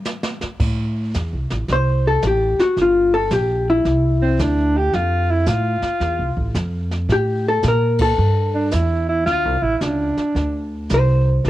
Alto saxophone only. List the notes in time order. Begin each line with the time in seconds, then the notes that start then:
4.22 C4
4.41 D4
4.77 G4
4.95 F4
5.31 E4
5.48 F4
8.54 D4
8.73 E4
9.09 E4
9.26 F4
9.62 E4
9.77 E4
9.82 D4